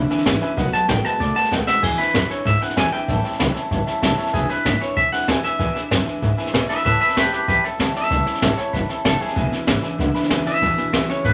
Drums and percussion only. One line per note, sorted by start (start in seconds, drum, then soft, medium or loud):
0.10 snare soft
0.18 snare soft
0.26 kick medium
0.26 snare loud
0.26 hi-hat pedal medium
0.41 snare soft
0.57 kick loud
0.57 snare soft
0.73 snare soft
0.89 kick medium
0.89 snare loud
0.89 hi-hat pedal medium
1.05 snare soft
1.20 kick loud
1.20 snare soft
1.36 snare soft
1.44 snare soft
1.52 kick medium
1.52 snare medium
1.52 hi-hat pedal medium
1.67 snare medium
1.83 kick loud
1.83 snare soft
1.83 crash loud
1.99 snare soft
2.14 kick loud
2.14 snare loud
2.14 hi-hat pedal medium
2.30 snare soft
2.45 kick loud
2.45 snare soft
2.61 snare soft
2.69 snare soft
2.77 kick medium
2.77 snare loud
2.77 hi-hat pedal medium
2.93 snare soft
3.08 kick loud
3.08 snare soft
3.24 snare soft
3.32 snare soft
3.40 kick medium
3.40 snare loud
3.40 hi-hat pedal medium
3.56 snare soft
3.71 kick loud
3.71 snare soft
3.87 snare soft
4.02 kick medium
4.02 snare loud
4.02 hi-hat pedal medium
4.18 snare soft
4.26 snare soft
4.34 kick loud
4.34 snare soft
4.50 snare soft
4.65 kick medium
4.65 snare loud
4.65 hi-hat pedal medium
4.81 snare soft
4.97 kick loud
4.97 snare soft
5.13 snare soft
5.21 snare soft
5.28 kick medium
5.28 snare loud
5.28 hi-hat pedal medium
5.44 snare soft
5.59 kick loud
5.59 snare soft
5.76 snare soft
5.91 kick medium
5.91 snare loud
5.91 hi-hat pedal medium
6.07 snare soft
6.22 kick loud
6.22 snare soft
6.38 snare soft
6.46 snare soft
6.54 kick medium
6.54 snare loud
6.54 hi-hat pedal medium
6.70 snare soft
6.78 snare soft
6.85 kick loud
6.85 snare soft
7.01 snare soft
7.09 snare soft
7.17 kick medium
7.17 snare loud
7.17 hi-hat pedal medium
7.33 snare soft
7.48 kick loud
7.48 snare soft
7.64 snare soft
7.79 kick medium
7.79 snare loud
7.79 hi-hat pedal medium
7.95 snare soft
8.03 snare soft
8.10 kick loud
8.10 snare soft
8.26 snare soft
8.34 snare soft
8.42 kick medium
8.42 snare loud
8.42 hi-hat pedal medium
8.58 snare soft
8.73 kick loud
8.73 snare soft
8.89 snare soft
9.05 kick medium
9.05 snare loud
9.05 hi-hat pedal medium
9.21 snare soft
9.28 snare soft
9.36 kick loud
9.36 snare soft
9.52 snare soft
9.67 kick medium
9.67 snare loud
9.67 hi-hat pedal medium
9.83 snare soft
9.99 kick loud
9.99 snare soft
10.15 snare soft
10.23 snare soft
10.30 kick medium
10.30 snare loud
10.30 hi-hat pedal medium
10.46 snare soft
10.54 snare soft
10.62 kick loud
10.62 snare soft
10.77 snare soft
10.93 kick medium
10.93 snare loud
10.93 hi-hat pedal medium
11.09 snare soft
11.24 kick loud
11.24 snare soft